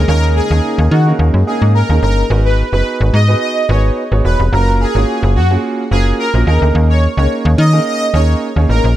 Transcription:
0.00 2.26 C#3 medium
0.00 2.26 G#3 medium
0.00 2.26 A#3 medium
0.00 2.26 D#4 medium
0.00 2.26 G#4 medium
0.08 0.41 D#2 loud
0.08 0.40 A#3 medium
0.08 0.40 C#4 medium
0.08 0.40 D#4 medium
0.08 0.40 G#4 medium
0.08 0.33 A#4 loud
0.08 0.40 C#5 medium
0.36 0.76 G#4 medium
0.50 0.61 D#2 medium
0.50 0.92 A#3 medium
0.50 0.92 C#4 medium
0.50 0.92 D#4 medium
0.50 0.92 G#4 medium
0.50 0.92 A#4 medium
0.78 0.89 D#2 loud
0.91 1.13 D#3 loud
0.91 1.05 F#4 medium
1.06 1.38 A#3 medium
1.06 1.38 C#4 medium
1.06 1.38 D#4 medium
1.06 1.38 G#4 medium
1.06 1.38 A#4 medium
1.19 1.31 D#2 loud
1.34 1.44 F#2 medium
1.47 1.79 A#3 medium
1.47 1.79 C#4 medium
1.47 1.79 D#4 medium
1.47 1.60 G#4 medium
1.47 1.79 G#4 medium
1.47 1.79 A#4 medium
1.62 1.83 G#2 medium
1.75 1.88 A#4 medium
1.89 2.00 D#2 medium
1.89 2.21 A#3 medium
1.89 2.21 C#4 medium
1.89 2.21 D#4 medium
1.89 2.21 G#4 medium
1.89 2.21 A#4 medium
2.02 2.24 G1 medium
2.02 2.16 A#4 medium
2.30 2.63 G#1 loud
2.30 2.62 B3 medium
2.30 2.62 D#4 medium
2.30 2.62 F#4 medium
2.30 2.62 G#4 medium
2.30 2.62 B4 medium
2.45 2.57 B4 medium
2.73 2.83 F#1 medium
2.73 3.14 B3 medium
2.73 3.14 D#4 medium
2.73 3.14 F#4 medium
2.73 3.14 G#4 medium
2.73 2.85 B4 medium
2.73 3.14 B4 medium
3.01 3.11 G#1 loud
3.14 3.35 G#2 loud
3.14 3.38 D#5 medium
3.28 3.60 B3 medium
3.28 3.60 D#4 medium
3.28 3.60 F#4 medium
3.28 3.60 G#4 medium
3.28 3.60 B4 medium
3.41 3.66 D#5 loud
3.69 3.91 G#1 loud
3.69 4.01 B3 medium
3.69 4.01 D#4 medium
3.69 4.01 F#4 medium
3.69 4.01 G#4 medium
3.69 4.01 B4 medium
3.69 3.82 C#5 medium
4.12 4.22 G#1 loud
4.12 4.43 B3 medium
4.12 4.43 D#4 medium
4.12 4.43 F#4 medium
4.12 4.43 G#4 medium
4.12 4.43 C#5 medium
4.25 4.36 E1 medium
4.25 4.38 B4 medium
4.40 4.50 F1 loud
4.52 4.86 F#1 loud
4.52 4.84 A#3 medium
4.52 4.84 C#4 medium
4.52 4.84 F4 medium
4.52 4.84 F#4 medium
4.52 4.77 A#4 loud
4.52 4.85 A#4 medium
4.80 5.20 G#4 medium
4.95 5.05 G#1 medium
4.95 5.36 A#3 medium
4.95 5.36 C#4 medium
4.95 5.36 F4 medium
4.95 5.37 F#4 medium
4.95 5.37 C#5 medium
5.23 5.37 F#1 loud
5.36 5.57 F#2 loud
5.36 5.49 F#4 medium
5.50 5.82 A#3 medium
5.50 5.82 C#4 medium
5.50 5.82 F4 medium
5.50 5.82 F#4 medium
5.50 5.82 G#4 medium
5.91 6.13 F#1 loud
5.91 6.23 A#3 medium
5.91 6.23 C#4 medium
5.91 6.23 F4 medium
5.91 6.23 F#4 medium
5.91 6.05 G#4 medium
5.91 6.24 A#4 medium
6.19 6.32 A#4 medium
6.34 6.44 A#1 medium
6.34 6.45 A#3 medium
6.34 6.45 C#4 medium
6.34 6.47 F4 medium
6.34 6.47 F#4 medium
6.34 6.46 A#4 medium
6.47 6.58 D#2 loud
6.47 7.03 A#3 medium
6.47 7.03 C#4 medium
6.47 7.03 D#4 medium
6.47 7.03 G#4 medium
6.47 6.60 A#4 medium
6.47 7.03 A#4 medium
6.62 6.72 D2 medium
6.75 7.08 D#2 loud
6.90 7.01 C#5 medium
7.17 7.27 C#2 loud
7.17 7.59 A#3 medium
7.17 7.59 C#4 medium
7.17 7.59 D#4 medium
7.17 7.59 G#4 medium
7.17 7.59 A#4 medium
7.17 7.29 C#5 medium
7.45 7.55 D#2 loud
7.58 7.80 D#3 loud
7.58 7.83 D#5 medium
7.73 8.04 A#3 medium
7.73 8.04 C#4 medium
7.73 8.04 D#4 medium
7.73 8.04 G#4 medium
7.73 8.04 A#4 medium
7.86 8.11 D#5 medium
8.13 8.35 D#2 loud
8.13 8.46 A#3 medium
8.13 8.46 C#4 medium
8.13 8.46 D#4 medium
8.13 8.46 G#4 medium
8.13 8.46 A#4 medium
8.13 8.27 C#5 medium
8.56 8.66 D#2 medium
8.56 8.88 A#3 medium
8.56 8.88 C#4 medium
8.56 8.88 D#4 medium
8.56 8.88 G#4 medium
8.56 8.88 C#5 medium
8.69 8.81 A1 medium
8.69 8.82 A#4 medium
8.84 8.94 A#1 loud

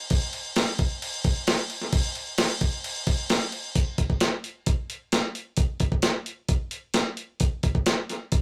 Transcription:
0.10 kick loud
0.10 crash medium
0.33 crash medium
0.56 snare loud
0.56 crash medium
0.79 kick medium
0.79 crash medium
1.02 crash medium
1.24 kick loud
1.24 crash medium
1.47 snare loud
1.47 crash medium
1.70 crash medium
1.81 snare soft
1.93 kick loud
1.93 crash medium
2.15 crash medium
2.38 snare loud
2.38 crash loud
2.61 kick medium
2.61 crash medium
2.84 crash medium
3.07 kick medium
3.07 crash medium
3.30 snare loud
3.30 crash medium
3.52 crash medium
3.75 kick loud
3.75 open hi-hat medium
3.98 kick medium
3.98 open hi-hat soft
4.10 kick medium
4.20 snare loud
4.20 open hi-hat medium
4.44 open hi-hat medium
4.66 kick loud
4.66 open hi-hat medium
4.90 open hi-hat medium
5.12 snare loud
5.12 open hi-hat medium
5.35 open hi-hat medium
5.57 kick loud
5.57 open hi-hat medium
5.80 kick medium
5.80 open hi-hat medium
5.92 kick medium
6.02 snare loud
6.02 open hi-hat medium
6.26 open hi-hat medium
6.49 kick loud
6.49 open hi-hat medium
6.71 open hi-hat medium
6.94 snare loud
6.94 open hi-hat medium
7.17 open hi-hat medium
7.40 kick loud
7.40 open hi-hat medium
7.63 kick medium
7.63 open hi-hat medium
7.75 kick medium
7.86 snare loud
7.86 open hi-hat medium
8.09 snare soft
8.09 open hi-hat medium
8.32 kick loud
8.32 open hi-hat medium

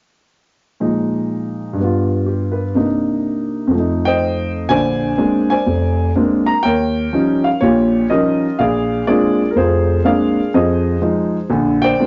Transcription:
0.80 1.77 A#2 soft
0.80 1.78 F3 soft
0.80 1.78 G#3 soft
0.80 1.78 D#4 soft
1.73 2.73 G2 soft
1.73 2.74 G3 soft
1.81 2.76 B3 soft
1.81 2.78 F4 soft
2.26 2.64 G4 soft
2.52 2.85 B4 soft
2.75 3.72 C3 soft
2.75 3.72 A#3 soft
2.75 3.72 D4 soft
2.75 3.73 D#4 soft
3.67 4.67 F2 soft
3.67 4.68 F3 soft
3.75 4.71 A3 soft
3.75 4.73 D#4 soft
4.05 4.66 C5 medium
4.05 4.66 D#5 medium
4.05 4.50 G5 medium
4.69 5.12 A#1 medium
4.69 5.12 D3 medium
4.69 5.51 C5 medium
4.69 5.51 D5 medium
4.69 5.49 G#5 medium
5.18 5.52 G#3 soft
5.18 5.52 A#3 soft
5.18 5.52 C4 soft
5.18 5.52 D4 soft
5.50 6.44 C5 medium
5.50 6.44 D5 medium
5.50 6.10 G#5 medium
5.66 6.08 F1 medium
6.16 6.50 G#3 soft
6.16 6.50 A#3 soft
6.16 6.50 C4 soft
6.16 6.50 D4 soft
6.46 6.62 A#5 medium
6.63 7.07 D#2 medium
6.63 7.57 A#4 medium
6.63 7.57 C#5 medium
6.63 7.47 G5 medium
7.13 7.47 F3 soft
7.13 7.47 G3 soft
7.13 7.47 C#4 soft
7.13 7.47 D#4 soft
7.44 7.59 F5 medium
7.61 8.03 A#1 medium
7.61 8.03 A#2 medium
7.61 8.55 F4 medium
7.61 8.10 G4 medium
7.61 8.06 C#5 medium
8.10 8.44 F3 medium
8.10 8.44 G3 soft
8.10 8.44 C#4 soft
8.10 8.45 D#4 medium
8.10 8.56 G4 medium
8.10 8.55 A#4 medium
8.10 8.59 D#5 medium
8.59 9.01 A#1 medium
8.59 9.08 G#4 medium
8.59 9.06 D5 medium
8.59 9.03 F5 medium
9.07 9.41 G#3 medium
9.07 9.42 A#3 soft
9.07 9.42 C4 soft
9.07 9.42 D4 medium
9.07 9.56 F4 medium
9.07 9.56 G#4 medium
9.07 9.48 D5 medium
9.51 9.55 A#4 medium
9.56 9.98 F1 medium
9.56 10.50 F4 medium
9.56 10.04 G#4 medium
9.56 10.06 C5 medium
10.04 10.39 G#3 soft
10.04 10.39 A#3 soft
10.04 10.39 C4 soft
10.04 10.39 D4 medium
10.04 10.50 G#4 soft
10.04 10.50 D5 medium
10.04 10.55 F5 medium
10.54 10.96 F2 medium
10.54 10.96 F3 medium
10.54 11.47 G#4 soft
10.54 11.47 C5 soft
10.54 10.99 D#5 medium
11.02 11.36 F3 soft
11.02 11.36 G#3 soft
11.02 11.36 D#4 soft
11.50 11.92 A#1 medium
11.50 11.92 D3 medium
11.82 12.07 C5 medium
11.82 12.07 D5 medium
11.82 12.07 G5 medium
11.99 12.07 G#3 soft
11.99 12.07 A#3 soft
11.99 12.07 C4 soft
11.99 12.07 D4 soft

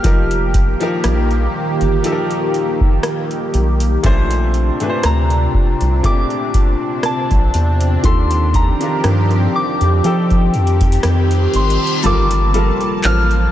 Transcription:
0.00 4.00 D#3 medium
0.00 0.53 F3 medium
0.00 4.00 A#3 medium
0.00 0.53 D#4 medium
0.00 4.00 G4 medium
0.00 2.51 F6 medium
0.00 kick loud
0.04 0.71 F1 loud
0.04 0.54 G4 medium
0.04 0.54 A#4 medium
0.04 closed hi-hat medium
0.31 closed hi-hat medium
0.54 kick medium
0.54 closed hi-hat medium
0.80 1.61 F3 medium
0.80 1.61 D#4 medium
0.80 1.62 G4 medium
0.80 1.62 A#4 medium
0.80 closed hi-hat soft
1.04 1.47 A#1 medium
1.04 cross-stick medium
1.04 closed hi-hat medium
1.31 closed hi-hat soft
1.81 2.01 G1 medium
1.81 closed hi-hat soft
2.03 3.36 F3 medium
2.03 3.36 D#4 medium
2.03 3.37 G4 medium
2.03 2.12 A4 medium
2.03 closed hi-hat medium
2.12 3.40 A#4 medium
2.31 closed hi-hat soft
2.54 closed hi-hat medium
2.81 kick medium
3.03 cross-stick loud
3.03 closed hi-hat medium
3.31 closed hi-hat medium
3.54 3.97 B1 medium
3.54 closed hi-hat medium
3.80 closed hi-hat medium
4.03 4.71 A#1 loud
4.03 4.53 A#2 medium
4.03 8.00 C3 medium
4.03 4.53 A3 medium
4.03 12.00 C4 medium
4.03 10.00 D4 medium
4.03 4.54 D4 medium
4.03 4.54 C5 loud
4.03 kick loud
4.03 closed hi-hat medium
4.31 closed hi-hat medium
4.54 closed hi-hat medium
4.80 5.61 A#2 medium
4.80 5.61 A3 medium
4.80 5.62 D4 medium
4.80 4.88 B4 medium
4.80 closed hi-hat soft
4.89 5.66 C5 medium
5.03 5.47 D2 medium
5.03 6.08 A#5 medium
5.03 cross-stick loud
5.03 closed hi-hat medium
5.30 closed hi-hat soft
5.54 kick medium
5.81 6.01 C2 medium
5.81 closed hi-hat soft
6.03 7.36 A#2 medium
6.03 7.36 A3 medium
6.03 6.12 C4 medium
6.03 7.37 G4 medium
6.03 7.08 D6 loud
6.03 kick medium
6.03 closed hi-hat medium
6.12 7.40 D4 medium
6.30 closed hi-hat soft
6.54 kick loud
6.54 closed hi-hat medium
7.03 8.08 A5 medium
7.03 cross-stick loud
7.03 closed hi-hat medium
7.31 7.51 A#1 medium
7.31 kick medium
7.31 closed hi-hat soft
7.54 7.97 E2 medium
7.54 closed hi-hat medium
7.81 closed hi-hat medium
8.03 8.71 D#2 loud
8.03 8.53 D#3 medium
8.03 10.02 F3 medium
8.03 8.53 D4 medium
8.03 8.53 F4 medium
8.03 10.02 G4 medium
8.03 8.54 G4 medium
8.03 8.54 A4 medium
8.03 8.56 C6 loud
8.03 kick loud
8.03 closed hi-hat medium
8.31 closed hi-hat medium
8.54 9.58 A#5 medium
8.54 kick medium
8.54 closed hi-hat medium
8.80 9.61 D#3 medium
8.80 9.61 D4 medium
8.80 9.62 F4 medium
8.80 9.62 G4 medium
8.80 9.62 A#4 medium
8.80 closed hi-hat soft
9.04 9.47 G2 loud
9.04 cross-stick loud
9.04 closed hi-hat medium
9.31 closed hi-hat soft
9.56 10.01 D6 medium
9.81 10.01 F2 medium
9.81 closed hi-hat soft
10.03 12.02 D#3 medium
10.03 11.36 F3 medium
10.03 10.56 F3 loud
10.03 11.37 D#4 medium
10.03 12.02 G4 medium
10.03 11.37 G4 medium
10.03 11.38 A4 medium
10.03 11.51 G5 medium
10.03 closed hi-hat medium
10.03 reverse cymbal medium
10.30 kick medium
10.30 closed hi-hat soft
10.54 10.97 F2 medium
10.54 closed hi-hat soft
10.67 closed hi-hat soft
10.81 kick medium
10.81 closed hi-hat medium
10.92 closed hi-hat medium
11.03 11.47 F2 loud
11.03 cross-stick loud
11.03 closed hi-hat medium
11.31 closed hi-hat soft
11.54 11.78 G#1 medium
11.54 12.07 C6 medium
11.54 closed hi-hat medium
11.70 closed hi-hat medium
11.87 closed hi-hat soft
12.03 12.71 G1 loud
12.03 13.52 F3 medium
12.03 12.38 G3 medium
12.03 13.52 A#3 medium
12.03 12.38 F4 medium
12.03 12.39 A4 medium
12.03 12.39 A#4 medium
12.03 13.18 A5 medium
12.03 13.52 A5 medium
12.03 13.01 D6 medium
12.03 closed hi-hat medium
12.03 impact medium
12.31 closed hi-hat medium
12.53 13.20 G3 medium
12.53 13.21 F4 medium
12.53 13.21 A4 medium
12.53 13.22 A#4 medium
12.53 closed hi-hat medium
12.81 closed hi-hat medium
13.04 13.47 A1 loud
13.04 13.52 F6 loud
13.04 clap loud
13.04 closed hi-hat medium
13.31 closed hi-hat soft

